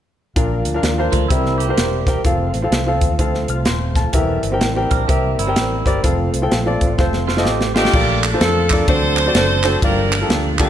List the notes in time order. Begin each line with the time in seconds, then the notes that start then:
0.36 A#1 A#2 F3 A#3 D4 F4 A#4 F5, kick, closed hi-hat
0.65 D2, closed hi-hat
0.74 D4 F4 A#4 F5
0.83 D#2, snare, closed hi-hat
0.98 D4 F4 A#4 C5
1.12 D2 A3 F4, kick, closed hi-hat
1.28 C2 C3 G3 C4 E4 G4 A4 A#4 E5, kick, closed hi-hat
1.37 A#4
1.46 snare
1.58 A#3 G4, closed hi-hat
1.69 C4 G4 A#4 C5
1.77 E1, snare, closed hi-hat
2.07 C4 G4 A#4 G5, kick, snare, closed hi-hat
2.24 F1 F3 A3 C4 F4 A4 C5 F5, kick, closed hi-hat
2.54 A1, closed hi-hat
2.62 C4 F4 A4 F5
2.71 C2, snare, closed hi-hat
2.87 C4 F4 A4 F5
3.01 D#2, kick, closed hi-hat
3.19 D2 C4 F4 A4 F5, kick, closed hi-hat
3.35 snare
3.48 C2 C5 A5 F6, closed hi-hat
3.65 D#1 G5 C6, snare, closed hi-hat
3.96 A4 F5 A5, kick, snare, closed hi-hat
4.12 E1 E3 G3 A#3 C4 E4 G4 A#4 E5, kick, closed hi-hat
4.43 G1, closed hi-hat
4.52 C4 G4 A#4 G5
4.60 A1, snare, closed hi-hat
4.76 C4 G4 A#4 G5
4.91 A#1 D4 A#4, kick, closed hi-hat
5.08 C2 A#3 C4 G4 A#4 E5, kick, closed hi-hat
5.38 G1 G3 E4, closed hi-hat
5.47 C4 G4 A#4 G5
5.56 A1, snare, closed hi-hat
5.86 G1 C4 G4 A#4 D5, kick, closed hi-hat
6.03 F1 F3 A3 C4 F4 A4 C5 F5, kick, closed hi-hat
6.34 C2, closed hi-hat
6.42 C4 F4 A4 G5
6.51 A#1, snare, closed hi-hat
6.66 C4 F4 A4 D5
6.81 A1, kick, closed hi-hat
6.98 F1 C4 F4 A4 C5, kick, snare
7.13 snare
7.27 A3 F4, snare
7.36 C4 F4 A4 D#5, snare
7.43 A1 G4, snare
7.61 snare
7.74 A3 C4 D4 F4 G4 A4 D#5, snare
7.85 snare
7.93 A#1 A#2 F3 A3 A#3 D4 F4 A4 D5, kick, crash
8.23 clap, ride
8.33 A#3 D4 F4 A4 C5
8.40 F2 D4 F4 A4, snare, ride
8.70 A#3 D4 F4 A4 D5, kick, clap, ride
8.87 D2 D3 F#3 A3 C4 D4 F#4 A4 C5 D5, kick, ride
9.17 clap, ride
9.26 C4 D4 F#4 A4 D5
9.35 F#1 F#4 A4 C5, snare, ride
9.63 C4 D4 F#4 A4 C5, snare, clap, ride
9.82 G1 G2 F3 G3 A#3 D4 F4 G4 A#4 D5, kick, ride
9.87 G4
10.12 clap, ride
10.21 A#3 D4 F4 G4 A4
10.29 D2, snare, ride
10.59 A#3 B3 D4 F4 G4 A4, kick, clap, ride